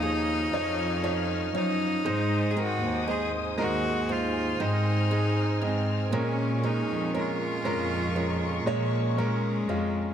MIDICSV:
0, 0, Header, 1, 6, 480
1, 0, Start_track
1, 0, Tempo, 1016949
1, 969, Time_signature, 4, 2, 24, 8
1, 4785, End_track
2, 0, Start_track
2, 0, Title_t, "String section"
2, 0, Program_c, 0, 48
2, 0, Note_on_c, 0, 73, 66
2, 0, Note_on_c, 0, 77, 63
2, 2, Note_on_c, 0, 89, 70
2, 950, Note_off_c, 0, 73, 0
2, 950, Note_off_c, 0, 77, 0
2, 956, Note_off_c, 0, 89, 0
2, 967, Note_on_c, 0, 72, 77
2, 967, Note_on_c, 0, 80, 68
2, 969, Note_on_c, 0, 87, 80
2, 1919, Note_off_c, 0, 87, 0
2, 1931, Note_on_c, 0, 89, 65
2, 2869, Note_off_c, 0, 72, 0
2, 2881, Note_off_c, 0, 89, 0
2, 2888, Note_on_c, 0, 70, 70
2, 2890, Note_on_c, 0, 85, 84
2, 3829, Note_off_c, 0, 80, 0
2, 3848, Note_on_c, 0, 82, 52
2, 4785, Note_off_c, 0, 70, 0
2, 4785, Note_off_c, 0, 82, 0
2, 4785, Note_off_c, 0, 85, 0
2, 4785, End_track
3, 0, Start_track
3, 0, Title_t, "Cello"
3, 0, Program_c, 1, 42
3, 0, Note_on_c, 1, 63, 111
3, 730, Note_off_c, 1, 63, 0
3, 736, Note_on_c, 1, 63, 106
3, 1181, Note_on_c, 1, 68, 61
3, 1188, Note_off_c, 1, 63, 0
3, 1222, Note_on_c, 1, 66, 91
3, 1229, Note_off_c, 1, 68, 0
3, 1455, Note_off_c, 1, 66, 0
3, 1460, Note_on_c, 1, 68, 84
3, 1554, Note_off_c, 1, 68, 0
3, 1701, Note_on_c, 1, 66, 102
3, 1942, Note_on_c, 1, 65, 90
3, 1949, Note_off_c, 1, 66, 0
3, 2184, Note_on_c, 1, 63, 92
3, 2191, Note_off_c, 1, 65, 0
3, 2657, Note_off_c, 1, 63, 0
3, 2661, Note_on_c, 1, 60, 83
3, 2902, Note_on_c, 1, 61, 85
3, 2910, Note_off_c, 1, 60, 0
3, 3139, Note_on_c, 1, 63, 76
3, 3146, Note_off_c, 1, 61, 0
3, 3374, Note_off_c, 1, 63, 0
3, 3380, Note_on_c, 1, 65, 85
3, 4076, Note_off_c, 1, 65, 0
3, 4105, Note_on_c, 1, 53, 74
3, 4340, Note_on_c, 1, 56, 98
3, 4348, Note_off_c, 1, 53, 0
3, 4785, Note_off_c, 1, 56, 0
3, 4785, End_track
4, 0, Start_track
4, 0, Title_t, "Upright piano"
4, 0, Program_c, 2, 0
4, 0, Control_c, 2, 64, 127
4, 0, Note_on_c, 2, 53, 97
4, 0, Note_on_c, 2, 63, 78
4, 0, Note_on_c, 2, 65, 106
4, 0, Note_on_c, 2, 68, 83
4, 0, Note_on_c, 2, 73, 76
4, 8, Note_off_c, 2, 53, 0
4, 8, Note_on_c, 2, 53, 65
4, 13, Note_off_c, 2, 63, 0
4, 13, Note_off_c, 2, 68, 0
4, 13, Note_on_c, 2, 63, 59
4, 13, Note_on_c, 2, 68, 66
4, 237, Note_off_c, 2, 53, 0
4, 239, Note_off_c, 2, 63, 0
4, 239, Note_off_c, 2, 68, 0
4, 247, Note_on_c, 2, 53, 88
4, 250, Note_on_c, 2, 63, 76
4, 254, Note_off_c, 2, 73, 0
4, 254, Note_on_c, 2, 73, 101
4, 476, Note_off_c, 2, 53, 0
4, 478, Note_off_c, 2, 63, 0
4, 479, Note_off_c, 2, 73, 0
4, 484, Note_on_c, 2, 53, 80
4, 487, Note_on_c, 2, 63, 71
4, 491, Note_on_c, 2, 73, 95
4, 715, Note_off_c, 2, 53, 0
4, 716, Note_off_c, 2, 63, 0
4, 718, Note_off_c, 2, 73, 0
4, 724, Note_on_c, 2, 53, 71
4, 727, Note_on_c, 2, 63, 57
4, 729, Note_on_c, 2, 73, 67
4, 954, Note_off_c, 2, 53, 0
4, 956, Note_off_c, 2, 63, 0
4, 957, Note_off_c, 2, 73, 0
4, 966, Note_on_c, 2, 56, 92
4, 970, Note_on_c, 2, 44, 64
4, 971, Note_on_c, 2, 63, 75
4, 973, Note_on_c, 2, 72, 93
4, 975, Control_c, 2, 64, 0
4, 977, Note_off_c, 2, 65, 0
4, 1046, Control_c, 2, 64, 127
4, 1196, Note_off_c, 2, 56, 0
4, 1198, Note_off_c, 2, 63, 0
4, 1199, Note_off_c, 2, 72, 0
4, 1207, Note_on_c, 2, 56, 64
4, 1210, Note_on_c, 2, 63, 61
4, 1214, Note_on_c, 2, 70, 71
4, 1436, Note_off_c, 2, 56, 0
4, 1438, Note_off_c, 2, 63, 0
4, 1440, Note_off_c, 2, 70, 0
4, 1447, Note_on_c, 2, 56, 70
4, 1451, Note_on_c, 2, 63, 61
4, 1454, Note_on_c, 2, 72, 72
4, 1671, Note_off_c, 2, 44, 0
4, 1676, Note_off_c, 2, 56, 0
4, 1678, Note_off_c, 2, 63, 0
4, 1680, Note_off_c, 2, 72, 0
4, 1688, Note_on_c, 2, 56, 100
4, 1692, Note_on_c, 2, 63, 85
4, 1694, Note_on_c, 2, 70, 108
4, 1916, Note_off_c, 2, 56, 0
4, 1919, Note_off_c, 2, 63, 0
4, 1920, Note_off_c, 2, 70, 0
4, 1926, Note_on_c, 2, 56, 60
4, 1931, Note_on_c, 2, 63, 64
4, 1933, Note_on_c, 2, 72, 68
4, 2156, Note_off_c, 2, 56, 0
4, 2158, Note_off_c, 2, 63, 0
4, 2159, Note_off_c, 2, 72, 0
4, 2170, Note_on_c, 2, 56, 76
4, 2172, Note_on_c, 2, 63, 76
4, 2175, Note_on_c, 2, 72, 85
4, 2397, Note_off_c, 2, 56, 0
4, 2398, Note_off_c, 2, 63, 0
4, 2400, Note_off_c, 2, 72, 0
4, 2410, Note_on_c, 2, 56, 70
4, 2412, Note_on_c, 2, 63, 69
4, 2416, Note_on_c, 2, 68, 76
4, 2637, Note_off_c, 2, 56, 0
4, 2639, Note_off_c, 2, 63, 0
4, 2641, Note_off_c, 2, 68, 0
4, 2650, Note_on_c, 2, 56, 71
4, 2653, Note_on_c, 2, 63, 64
4, 2655, Note_on_c, 2, 75, 72
4, 2878, Note_off_c, 2, 56, 0
4, 2879, Note_off_c, 2, 63, 0
4, 2880, Note_off_c, 2, 75, 0
4, 2890, Note_on_c, 2, 56, 80
4, 2893, Note_on_c, 2, 46, 59
4, 2894, Note_on_c, 2, 61, 76
4, 2895, Control_c, 2, 64, 0
4, 2897, Note_on_c, 2, 70, 93
4, 2969, Control_c, 2, 64, 127
4, 3118, Note_off_c, 2, 56, 0
4, 3120, Note_off_c, 2, 61, 0
4, 3121, Note_off_c, 2, 70, 0
4, 3131, Note_on_c, 2, 56, 66
4, 3136, Note_on_c, 2, 61, 62
4, 3139, Note_on_c, 2, 70, 66
4, 3358, Note_off_c, 2, 56, 0
4, 3361, Note_off_c, 2, 61, 0
4, 3362, Note_off_c, 2, 70, 0
4, 3369, Note_on_c, 2, 56, 70
4, 3371, Note_on_c, 2, 61, 60
4, 3375, Note_on_c, 2, 70, 77
4, 3592, Note_off_c, 2, 46, 0
4, 3597, Note_off_c, 2, 56, 0
4, 3598, Note_off_c, 2, 61, 0
4, 3600, Note_off_c, 2, 70, 0
4, 3607, Note_on_c, 2, 56, 84
4, 3612, Note_on_c, 2, 61, 82
4, 3615, Note_on_c, 2, 70, 102
4, 3836, Note_off_c, 2, 56, 0
4, 3838, Note_off_c, 2, 61, 0
4, 3840, Note_off_c, 2, 70, 0
4, 3849, Note_on_c, 2, 56, 59
4, 3849, Note_on_c, 2, 61, 55
4, 3854, Note_on_c, 2, 70, 62
4, 4077, Note_off_c, 2, 56, 0
4, 4077, Note_off_c, 2, 61, 0
4, 4080, Note_off_c, 2, 70, 0
4, 4088, Note_on_c, 2, 56, 96
4, 4090, Note_on_c, 2, 61, 77
4, 4093, Note_on_c, 2, 73, 107
4, 4316, Note_off_c, 2, 56, 0
4, 4317, Note_off_c, 2, 61, 0
4, 4319, Note_off_c, 2, 73, 0
4, 4327, Note_on_c, 2, 56, 77
4, 4332, Note_on_c, 2, 61, 77
4, 4333, Note_on_c, 2, 70, 93
4, 4556, Note_off_c, 2, 56, 0
4, 4559, Note_off_c, 2, 61, 0
4, 4559, Note_off_c, 2, 70, 0
4, 4571, Note_on_c, 2, 56, 77
4, 4573, Note_on_c, 2, 61, 65
4, 4575, Note_on_c, 2, 65, 81
4, 4785, Note_off_c, 2, 56, 0
4, 4785, Note_off_c, 2, 61, 0
4, 4785, Note_off_c, 2, 65, 0
4, 4785, End_track
5, 0, Start_track
5, 0, Title_t, "Steel-string acoustic guitar"
5, 0, Program_c, 3, 25
5, 0, Note_on_c, 3, 61, 56
5, 0, Note_on_c, 3, 65, 62
5, 11, Note_on_c, 3, 63, 56
5, 246, Note_off_c, 3, 61, 0
5, 251, Note_on_c, 3, 61, 59
5, 487, Note_off_c, 3, 63, 0
5, 489, Note_on_c, 3, 63, 68
5, 724, Note_off_c, 3, 61, 0
5, 729, Note_on_c, 3, 61, 56
5, 970, Note_on_c, 3, 44, 86
5, 1016, Note_off_c, 3, 65, 0
5, 1017, Note_off_c, 3, 61, 0
5, 1211, Note_on_c, 3, 60, 55
5, 1449, Note_off_c, 3, 63, 0
5, 1451, Note_on_c, 3, 63, 62
5, 1691, Note_on_c, 3, 68, 62
5, 1925, Note_off_c, 3, 63, 0
5, 1931, Note_on_c, 3, 63, 65
5, 2165, Note_off_c, 3, 60, 0
5, 2171, Note_on_c, 3, 60, 62
5, 2406, Note_off_c, 3, 63, 0
5, 2412, Note_on_c, 3, 63, 63
5, 2645, Note_off_c, 3, 60, 0
5, 2650, Note_on_c, 3, 60, 48
5, 2890, Note_off_c, 3, 44, 0
5, 2891, Note_on_c, 3, 46, 93
5, 2938, Note_off_c, 3, 60, 0
5, 2939, Note_off_c, 3, 63, 0
5, 3131, Note_on_c, 3, 56, 62
5, 3343, Note_off_c, 3, 68, 0
5, 3373, Note_on_c, 3, 61, 56
5, 3611, Note_on_c, 3, 65, 60
5, 3849, Note_off_c, 3, 61, 0
5, 3851, Note_on_c, 3, 61, 55
5, 4087, Note_off_c, 3, 56, 0
5, 4093, Note_on_c, 3, 56, 63
5, 4333, Note_off_c, 3, 61, 0
5, 4335, Note_on_c, 3, 61, 63
5, 4568, Note_off_c, 3, 56, 0
5, 4574, Note_on_c, 3, 56, 46
5, 4785, Note_off_c, 3, 46, 0
5, 4785, Note_off_c, 3, 56, 0
5, 4785, Note_off_c, 3, 61, 0
5, 4785, Note_off_c, 3, 65, 0
5, 4785, End_track
6, 0, Start_track
6, 0, Title_t, "Cello section"
6, 0, Program_c, 4, 48
6, 0, Note_on_c, 4, 39, 88
6, 228, Note_off_c, 4, 39, 0
6, 248, Note_on_c, 4, 41, 88
6, 710, Note_off_c, 4, 41, 0
6, 726, Note_on_c, 4, 42, 95
6, 951, Note_off_c, 4, 42, 0
6, 968, Note_on_c, 4, 44, 103
6, 1310, Note_off_c, 4, 44, 0
6, 1328, Note_on_c, 4, 39, 100
6, 1552, Note_off_c, 4, 39, 0
6, 1691, Note_on_c, 4, 39, 91
6, 2151, Note_off_c, 4, 39, 0
6, 2168, Note_on_c, 4, 44, 94
6, 2630, Note_off_c, 4, 44, 0
6, 2650, Note_on_c, 4, 44, 80
6, 2873, Note_off_c, 4, 44, 0
6, 2888, Note_on_c, 4, 46, 92
6, 3230, Note_off_c, 4, 46, 0
6, 3249, Note_on_c, 4, 41, 82
6, 3472, Note_off_c, 4, 41, 0
6, 3606, Note_on_c, 4, 41, 85
6, 4068, Note_off_c, 4, 41, 0
6, 4090, Note_on_c, 4, 46, 99
6, 4551, Note_off_c, 4, 46, 0
6, 4572, Note_on_c, 4, 41, 76
6, 4785, Note_off_c, 4, 41, 0
6, 4785, End_track
0, 0, End_of_file